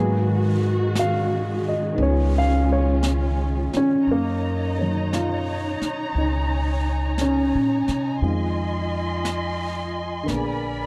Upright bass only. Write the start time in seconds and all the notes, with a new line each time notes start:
Already playing: G#2
1.98 C#2
3.75 muted upright bass stroke
4.07 F#2
5.81 muted upright bass stroke
6.15 C#2
7.55 A#2
7.88 C3
8.22 F2
10.28 A#1